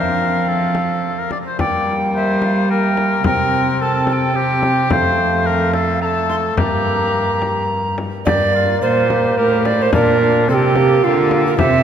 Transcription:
Already playing: cello F3, trombone C4, oboe A#4, recorder F5
0.48 oboe A4
0.75 frame drum
1.19 oboe A#4
1.31 oboe D5, frame drum
1.47 oboe C5
1.59 cello G3, trombone A#3, oboe D5, recorder G5, frame drum
2.16 oboe C5, recorder E5
2.42 recorder F5, frame drum
2.70 trombone A#3, oboe A#4, recorder G5
2.97 frame drum
3.24 cello C3, trombone C4, oboe A#4, recorder G5, frame drum
3.81 oboe A4, recorder A5
4.07 recorder A5, frame drum
4.13 recorder G5
4.35 trombone C4, oboe G4
4.63 frame drum
4.90 cello F2, trombone A3, oboe C5, recorder F5, frame drum
5.47 oboe A#4
5.74 oboe A4, frame drum
6.01 trombone A3, oboe A4, recorder A5 A#5
6.29 recorder C6, frame drum
6.57 cello G2, trombone A#3, oboe G4, recorder A#5, frame drum
7.42 frame drum
7.98 frame drum
8.25 cello G2, trombone A#3, oboe G4, recorder D5, frame drum
8.55 oboe F4
8.82 cello A#2, oboe F4, recorder C5
9.10 oboe G4, frame drum
9.38 cello A2, oboe G4, recorder A#4
9.65 recorder D5, frame drum
9.82 recorder C5
9.93 cello A#2, trombone D4, oboe F4, recorder A#4, frame drum
10.21 trombone D4
10.49 cello C3, trombone C4, oboe A4, recorder A4
10.54 recorder G4
10.76 trombone A#3, frame drum
11.04 cello D3, trombone A#3, recorder F4
11.31 frame drum
11.46 recorder A#4
11.58 cello C3, trombone C4, oboe G4, recorder E5, frame drum

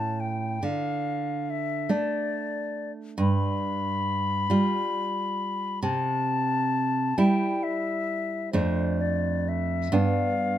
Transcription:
Already playing: nylon-string guitar A2 A3 C#4, flute A5
0.20 flute G5
0.63 nylon-string guitar D3, flute F5
1.50 flute E5
1.89 nylon-string guitar A3 D4, flute D5
3.18 nylon-string guitar G2, flute B5
4.50 nylon-string guitar G3 F4
5.83 nylon-string guitar C3, flute A5
7.18 nylon-string guitar G3 E4, flute G5
7.63 flute E5
8.53 nylon-string guitar F2 A3 D4, flute C5
9.01 flute D5
9.49 flute E5
9.92 nylon-string guitar G2 B3 D4, flute F5

